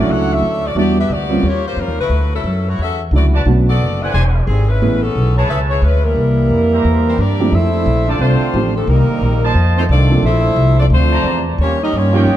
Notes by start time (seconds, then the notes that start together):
Already playing: F#3 A3 C#4 D4 E4
0.00 A3 C#4 F#4 D5
0.09 C#2 D4 A4 C#5 F#5
0.33 D4 A4 C#5 E5
0.42 D2
0.66 A3 C#4 F#4 D5
0.75 E2 G3 B3 D4 E4 F#4
0.79 B3 F#4 G4 D5
1.00 D4 G4 B4 E5
1.10 D2 B3 F#4 G4 D5
1.29 G3 A#3 C4 C#4 F4
1.43 D#2 G4
1.47 A#3 F4 C#5
1.68 A#3 F4 G4 C5
1.77 F2 G3 C#4 F4 A#4
1.88 D#2
1.99 C#2 A3 E4 F#4 B4
2.09 D2
2.35 F#3 C#4 E4 A4
2.44 F#2
2.68 A3 E4 F#4 C#5
2.79 E2 F#4 A4 E5
2.83 C#4
3.11 C#2 D3 F#3 A3 C#4 E4
3.16 A3 E4 F#4 D5
3.34 F#4 B4 D5 A5
3.45 B1 D3 A3 B3 C#4 F#4
3.69 B3 F#4 A4 D5
3.80 F#1
4.02 D4 E4 A4 B4 C5 D5 F#5 G#5
4.14 E1 D4 G4 C5 G#5
4.47 G#1 D3 G3 C4 G#4
4.68 G#3 C#4 E4 B4
4.81 A1 E3 A3 B3 C#4 G#4
5.02 E3 B3 C#4 A4
5.15 B1
5.37 B3 E4 G#4 B4 C#5 G#5 A5
5.49 C#2 C#4 G#4 B4 E5
5.70 B3 E4 G#4 C#5
5.82 D2 G#3 C#4 E4 B4
6.02 E3 G3 A#3 C4 E4 A#4
6.16 C2
6.50 F2
6.73 G4 C5 E5 A#5
6.85 E2
7.07 E3 G3 A#3 C4 E4 G4 C5
7.18 G2 G3 A#3 C4 D4 G4 A#4 D5
7.40 F3 A3 C4 D4 G4
7.51 F2 A3 C4 D4 E4 A4 C5 E5
7.86 A#1
8.06 D3 A3 C4 D4 F4 A4 C5 D5 A5
8.11 D5
8.19 C2 D3 A3 C4 D4 F4 C5
8.41 muted upright bass stroke
8.54 A1 F3 A3 C4 D4 G4
8.74 C3 D3 F3 A3 C4 D4 A4
8.87 C2 D#3 G3 A#3 C4 D#4 A#4
9.08 muted upright bass stroke
9.21 A#1
9.44 F4 C5 D#5 A5
9.55 F2
9.76 D#3 A3 C4 D#4 F4 C5
9.89 C2 D#3 A3 C4 D4 F4 A4 D5
10.11 F3 A#3 C4 D4 A4
10.22 A#1 F3 A3 D4 E4 A4 C5 E5
10.56 C2
10.79 F3 A3 C4 D4 F4 A4 D5
10.90 D2 F3 A3 C4 D4
10.94 A3 F4 C5
11.13 C5 D5 A5 A#5
11.24 E2
11.58 D#2 G3 A#3 C#4 F4 G4 C#5
11.81 G3 A#3 C#4 D#4 G4 A#4 D#5
11.93 G2 G3 A#3 C#4 F4 G4 C#5
12.13 F3 A#3 C#4 D#4 F4 G4 C#5 D#5 G5
12.27 F2